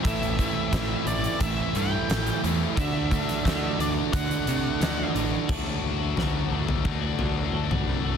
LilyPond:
<<
  \new Staff \with { instrumentName = "Lead electric guitar" } { \time 4/4 \key d \mixolydian \tempo 4 = 88 e''4. d''8 e''8 g''4 r8 | e''4. d''8 fis''4. r8 | r1 | }
  \new Staff \with { instrumentName = "Clean electric guitar" } { \time 4/4 \key d \mixolydian r1 | r1 | <d a d' fis'>8. <a d' fis'>16 <d a d' fis'>8 <d a d' fis'>8. <a d' fis'>16 <d a d' fis'>8 <d a d' fis'>16 <a d' fis'>8 <a d' fis'>16 | }
  \new Staff \with { instrumentName = "Distorted electric guitar" } { \time 4/4 \key d \mixolydian <a, e a c' e'>8 <a, e a c' e'>8 <a, e a c' e'>8 <a, e a c' e'>8 <a, e a c' e'>8 <a, e a c' e'>8 <a, e a c' e'>8 <a, e a c' e'>8 | <d a d' fis'>8 <d a d' fis'>8 <d a d' fis'>8 <d a d' fis'>8 <d a d' fis'>8 <d a d' fis'>8 <d a d' fis'>8 <d a d' fis'>8 | <d fis a d' fis'>2 <d fis a d' fis'>2 | }
  \new Staff \with { instrumentName = "Overdriven electric guitar" } { \clef bass \time 4/4 \key d \mixolydian <a, e a>8 <a, e a>8 <a, e a>8 <a, e a>8 <a, e a>8 <a, e a>8 <a, e a>8 <a, e a>8 | <d a d'>8 <d a d'>8 <d a d'>8 <d a d'>8 <d a d'>8 <d a d'>8 <d a d'>8 <d a d'>8 | r1 | }
  \new Staff \with { instrumentName = "Picked electric bass" } { \clef bass \time 4/4 \key d \mixolydian a,,4 a,,8 a,,8 a,,8 g,8 a,,8 e,8 | d,4 d,8 d,8 d,8 c8 d,8 a,,8 | d,8 d,8 d,8 d,8 d,8 d,8 d,8 c,8 | }
  \new DrumStaff \with { instrumentName = "Drums" } \drummode { \time 4/4 <hh bd>16 hh16 <hh bd>8 <hh bd sn>8 hh16 hh16 <hh bd>8 hh8 <hh sn>16 hh16 hh8 | <hh bd>8 <hh bd>16 <hh sn>16 <hh bd sn>8 hh8 <hh bd>16 hh16 hh8 <hh sn>8 hh8 | <cymc bd tomfh>4 <sn tomfh>8. tomfh16 bd8 tomfh8 r16 <tomfh toml>8. | }
>>